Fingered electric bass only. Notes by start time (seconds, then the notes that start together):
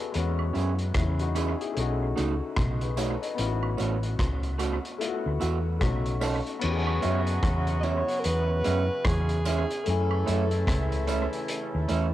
0.15 E2
0.55 F#2
0.96 E2
1.77 B1
2.18 C#2
2.58 B1
3.39 A1
3.80 A1
4.20 C#2
5.26 D2
5.42 E2
5.82 B1
6.64 E2
7.04 F#2
7.43 E2
8.25 E2
8.67 F#2
9.06 E2
9.87 F#2
10.28 F#2
10.68 C#2
11.75 D#2
11.90 E2